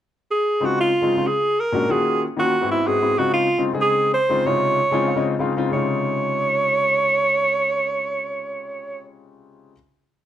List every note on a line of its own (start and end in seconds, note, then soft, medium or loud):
0.31 0.67 G#4 medium
0.60 0.89 C#3 medium
0.60 0.89 G#3 medium
0.60 0.89 C4 medium
0.60 0.90 D#4 medium
0.60 0.90 F4 medium
0.65 0.79 F#4 medium
0.81 1.29 F4 medium
1.01 1.13 C#3 medium
1.01 1.13 G#3 medium
1.01 1.13 C4 medium
1.01 1.13 D#4 medium
1.01 1.14 F4 medium
1.16 1.25 C#3 medium
1.16 1.25 G#3 medium
1.16 1.25 C4 medium
1.16 1.25 D#4 medium
1.16 1.26 F4 medium
1.27 1.62 G#4 medium
1.60 1.93 A#4 medium
1.72 1.84 A#2 medium
1.72 1.85 G#3 medium
1.72 1.85 C#4 medium
1.72 1.85 D4 medium
1.72 1.85 F#4 medium
1.88 2.23 D#3 medium
1.88 2.23 A#3 medium
1.88 2.23 C#4 medium
1.88 2.23 F4 medium
1.88 2.24 F#4 medium
1.88 2.22 G#4 loud
2.37 2.53 D#3 medium
2.37 2.53 A#3 medium
2.37 2.54 C#4 medium
2.37 2.54 F4 medium
2.37 2.54 F#4 medium
2.37 2.68 F#4 medium
2.61 2.78 G#2 medium
2.61 2.79 B3 medium
2.61 2.79 C4 medium
2.61 2.79 E4 medium
2.61 2.79 F#4 medium
2.71 2.89 E4 medium
2.85 2.97 G#2 medium
2.85 2.97 B3 medium
2.85 2.97 C4 medium
2.85 2.97 E4 medium
2.85 2.98 F#4 medium
2.85 3.20 G#4 medium
3.01 3.12 G#2 medium
3.01 3.13 B3 medium
3.01 3.13 C4 medium
3.01 3.13 E4 medium
3.01 3.14 F#4 medium
3.17 3.46 C#3 medium
3.17 3.46 G#3 medium
3.17 3.46 C4 medium
3.17 3.46 D#4 medium
3.17 3.46 F4 medium
3.17 3.33 F#4 loud
3.33 3.63 F4 medium
3.58 3.69 C#3 medium
3.58 3.69 G#3 medium
3.58 3.69 C4 medium
3.58 3.69 D#4 medium
3.58 3.70 F4 medium
3.73 4.12 C#3 medium
3.73 4.13 G#3 medium
3.73 4.13 C4 medium
3.73 4.13 D#4 medium
3.73 4.13 G#4 medium
3.81 4.11 G#4 loud
4.14 4.48 C5 loud
4.29 4.40 C#3 medium
4.29 4.41 G#3 medium
4.29 4.41 C4 medium
4.29 4.41 D#4 medium
4.29 4.41 F4 medium
4.45 4.79 C3 medium
4.45 4.79 C#3 medium
4.45 4.79 G#3 medium
4.45 4.79 D#4 medium
4.45 4.79 F4 medium
4.45 5.41 C#5 loud
4.91 5.09 C#3 medium
4.91 5.09 G#3 medium
4.91 5.10 C4 medium
4.91 5.10 D#4 medium
4.91 5.10 F4 loud
4.91 5.08 G#5 medium
5.08 5.16 F5 medium
5.16 5.33 C#3 medium
5.16 5.33 G#3 medium
5.16 5.33 C4 medium
5.16 5.33 D#4 medium
5.16 5.34 F4 medium
5.16 5.39 D#5 medium
5.39 5.51 C#3 medium
5.39 5.51 G#3 medium
5.39 5.52 C4 medium
5.39 5.52 D#4 medium
5.39 5.52 F4 medium
5.39 5.70 F5 medium
5.57 5.67 C#3 medium
5.57 5.68 G#3 medium
5.57 5.68 C4 medium
5.57 5.68 D#4 medium
5.57 5.68 F4 loud
5.69 9.70 C#3 medium
5.69 9.71 G#3 medium
5.73 9.72 C3 medium
5.73 9.73 D#4 medium
5.73 9.74 F4 medium
5.73 9.02 C#5 loud